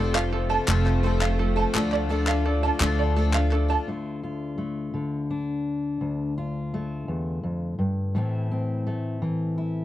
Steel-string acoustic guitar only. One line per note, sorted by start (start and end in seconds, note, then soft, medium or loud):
3.87 6.00 D2 soft
3.87 4.93 D3 soft
3.87 4.57 A3 soft
3.87 4.23 F4 soft
4.23 5.30 F4 soft
4.58 6.73 A3 soft
4.94 8.15 D3 soft
5.30 6.37 D4 soft
6.01 7.08 D2 medium
6.38 8.11 F4 soft
6.74 8.16 A3 soft
7.08 7.43 E2 soft
7.43 7.78 F2 soft
7.79 8.15 G2 soft
8.15 9.85 A2 medium
8.15 9.21 E3 soft
8.15 8.86 A3 soft
8.15 8.51 C4 soft
8.15 9.57 E4 soft
8.51 9.85 C4 soft
8.87 9.85 A3 soft
9.22 9.85 E3 soft
9.58 9.85 E4 soft